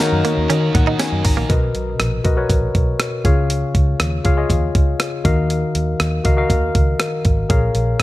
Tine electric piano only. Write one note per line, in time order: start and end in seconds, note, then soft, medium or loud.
0.00 0.21 D#3 medium
0.00 1.52 D#4 medium
0.00 1.49 F#4 medium
0.00 1.49 A#4 medium
0.00 1.51 C#5 medium
0.00 1.51 F5 medium
0.00 0.44 F#5 loud
0.75 0.98 F#5 medium
1.00 1.23 G#5 medium
1.25 1.48 A#5 medium
1.49 2.21 B2 medium
1.49 2.01 F#4 medium
1.49 2.01 A#4 medium
1.49 2.01 B4 medium
1.49 2.01 D#5 medium
2.24 2.33 F#4 medium
2.24 2.33 A#4 medium
2.24 2.33 B4 medium
2.24 2.34 D#5 medium
2.37 3.05 F#4 medium
2.37 3.06 A#4 medium
2.37 3.06 B4 medium
2.37 3.06 C#5 medium
3.24 3.96 C#3 medium
3.24 4.05 F4 medium
3.24 4.05 G#4 medium
3.24 4.05 C#5 medium
3.24 4.05 F5 medium
4.24 4.33 F4 medium
4.24 4.33 G#4 medium
4.24 4.34 C#5 medium
4.24 4.34 F5 medium
4.37 5.06 F4 medium
4.37 5.06 G#4 medium
4.37 5.06 C#5 medium
4.37 5.06 D#5 medium
5.24 5.96 D#3 medium
5.24 6.05 F#4 medium
5.24 6.05 A#4 medium
5.24 6.05 D#5 medium
5.24 6.05 F5 medium
6.24 6.33 F#4 medium
6.24 6.33 A#4 medium
6.24 6.34 D#5 medium
6.24 6.34 F5 medium
6.37 7.06 F#4 medium
6.37 7.06 A#4 medium
6.37 7.06 D#5 medium
6.37 7.06 F5 medium
7.49 8.03 A#2 medium
7.49 8.01 G#4 medium
7.49 8.01 A#4 medium
7.49 8.01 C#5 medium
7.49 8.02 F5 medium